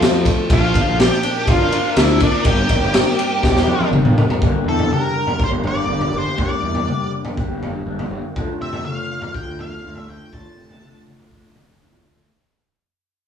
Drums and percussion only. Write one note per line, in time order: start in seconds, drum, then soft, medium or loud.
0.02 snare loud
0.02 ride loud
0.25 kick medium
0.25 snare soft
0.25 ride medium
0.50 kick loud
0.50 ride loud
0.74 kick medium
0.74 ride medium
1.00 snare loud
1.00 ride loud
1.12 snare soft
1.23 ride medium
1.47 kick loud
1.47 ride loud
1.72 ride medium
1.96 snare loud
1.96 ride loud
2.20 kick medium
2.20 ride medium
2.44 kick loud
2.44 ride loud
2.69 kick medium
2.69 ride medium
2.94 snare loud
2.94 ride loud
3.08 snare soft
3.19 ride medium
3.43 kick loud
3.43 snare medium
3.56 snare medium
3.67 high tom medium
3.81 high tom medium
3.93 mid tom medium
4.05 mid tom medium
4.18 floor tom loud
4.30 floor tom loud
4.42 kick loud
4.42 floor tom medium
4.79 floor tom medium
4.90 mid tom medium
5.27 floor tom medium
5.40 kick loud
5.64 floor tom medium
6.01 floor tom medium
6.38 kick loud
6.38 floor tom medium
6.75 floor tom medium
6.87 mid tom medium
7.25 floor tom medium
7.37 kick loud
7.63 floor tom medium
7.99 floor tom medium
8.36 kick loud
8.36 floor tom medium
8.73 floor tom medium
8.85 mid tom medium
9.22 floor tom medium
9.35 kick loud
9.59 floor tom medium
9.96 floor tom medium
10.32 kick loud
10.32 floor tom medium
10.70 floor tom medium
10.82 mid tom medium
11.07 mid tom medium
11.19 floor tom medium
11.31 kick loud
11.55 floor tom medium
11.55 mid tom medium
11.92 floor tom medium